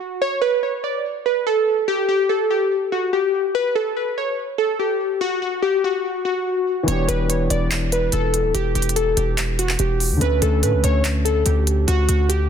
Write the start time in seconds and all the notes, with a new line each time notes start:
Already playing: F#4
0.22 C#5
0.41 B4
0.63 C#5
0.84 D5
1.26 B4
1.47 A4
1.88 G4
2.09 G4
2.29 A4
2.50 G4
2.92 F#4
3.13 G4
3.55 B4
3.75 A4
3.97 B4
4.18 C#5
4.58 A4
4.79 G4
5.21 F#4
5.42 F#4
5.62 G4
5.84 F#4
6.25 F#4
6.83 E3 B3
6.88 E1 D4 C#5, closed hi-hat
6.92 G4
7.08 E1 B4, closed hi-hat
7.30 C#5, closed hi-hat
7.50 E1 D5, closed hi-hat
7.71 clap, closed hi-hat
7.92 B4, closed hi-hat
8.12 E1 A4, closed hi-hat
8.34 closed hi-hat
8.44 D1
8.55 E1 G4, closed hi-hat
8.75 E1 G4, closed hi-hat
8.82 closed hi-hat
8.89 closed hi-hat
8.96 A4, closed hi-hat
9.17 E1 G4, closed hi-hat
9.38 clap, closed hi-hat
9.59 F#4, closed hi-hat
9.69 clap
9.79 E1 G4, closed hi-hat
10.00 open hi-hat
10.11 E2
10.17 D3 A3
10.21 D2 C#4 B4, closed hi-hat
10.26 A4
10.42 D2 A4, closed hi-hat
10.63 A2 B4, closed hi-hat
10.73 D2
10.84 D2 C#5, closed hi-hat
11.05 clap, closed hi-hat
11.25 A4, closed hi-hat
11.46 D2 G4, closed hi-hat
11.67 closed hi-hat
11.88 D2 F#4, closed hi-hat
12.09 D2 F#4, closed hi-hat
12.29 G4, closed hi-hat